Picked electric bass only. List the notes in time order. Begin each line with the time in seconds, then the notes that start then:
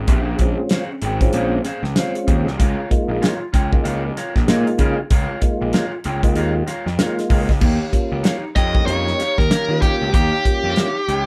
0.09 A#1
0.39 A#1
1.02 G#1
1.33 A#1
1.83 C#2
2.28 D#2
2.46 C2
2.60 C#2
3.08 A#1
3.54 C#2
3.85 C#2
4.36 A#1
4.49 A#2
4.79 C#3
5.11 C#2
5.62 A#1
6.05 C#2
6.36 D#2
6.86 F2
7.30 C#2
7.49 C#2
7.62 D#2
8.12 C#2
8.56 F2
8.87 F2
9.39 D#2
9.69 D#3
10.02 C#2
10.14 D#2
10.64 F2
11.08 C#2